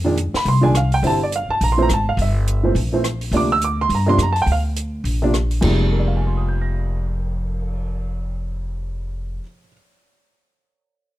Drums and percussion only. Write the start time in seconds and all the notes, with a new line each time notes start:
0.17 closed hi-hat
0.34 snare, open hi-hat
0.46 open hi-hat
0.75 cross-stick, closed hi-hat
0.92 open hi-hat
1.04 open hi-hat
1.32 closed hi-hat
1.61 open hi-hat
1.89 cross-stick, closed hi-hat
2.18 open hi-hat
2.47 closed hi-hat
2.76 open hi-hat
3.04 cross-stick, closed hi-hat
3.21 open hi-hat
3.32 open hi-hat
3.62 closed hi-hat
3.90 open hi-hat
4.19 cross-stick, closed hi-hat
4.36 open hi-hat
4.47 open hi-hat
4.76 closed hi-hat
5.05 open hi-hat
5.34 cross-stick, closed hi-hat
5.51 open hi-hat
5.62 kick, crash
5.79 cymbal swell